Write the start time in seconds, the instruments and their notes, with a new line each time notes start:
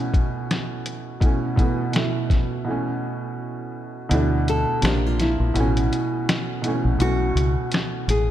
Already playing: upright piano B2 E3 A3 C#4
0.14 kick, closed hi-hat
0.51 finger snap, snare, closed hi-hat
0.86 closed hi-hat
1.20 upright piano B2 E3 A3, kick, closed hi-hat
1.26 upright piano C#4
1.56 upright piano B2 E3 A3, kick, closed hi-hat
1.61 upright piano B3
1.92 upright piano B2 E3 A3, closed hi-hat
1.96 upright piano E4, finger snap, snare
2.30 kick, snare, closed hi-hat
2.65 upright piano B2 E3 A3
2.70 upright piano C#4
4.09 fingered electric bass D2, upright piano B2 E3 A3, closed hi-hat
4.14 upright piano D4
4.48 nylon-string guitar A4, closed hi-hat
4.81 fingered electric bass A#1, upright piano C3 F3 A#3, nylon-string guitar G4, finger snap, snare, closed hi-hat
4.87 upright piano D4
5.06 nylon-string guitar F4
5.20 nylon-string guitar E4, snare, closed hi-hat
5.40 fingered electric bass A#1
5.54 fingered electric bass A1, upright piano B2 E3 A3, closed hi-hat
5.59 upright piano C#4
5.77 closed hi-hat
5.93 closed hi-hat
6.29 finger snap, snare, closed hi-hat
6.62 upright piano B2 E3 A3, closed hi-hat
6.67 upright piano C#4
6.85 fingered electric bass A#1
6.99 fingered electric bass B1, upright piano B2 E3 A3, nylon-string guitar F#4, closed hi-hat
7.04 upright piano C#4
7.36 fingered electric bass C#2, closed hi-hat
7.72 finger snap, snare, closed hi-hat
8.08 fingered electric bass A1, nylon-string guitar G#4, closed hi-hat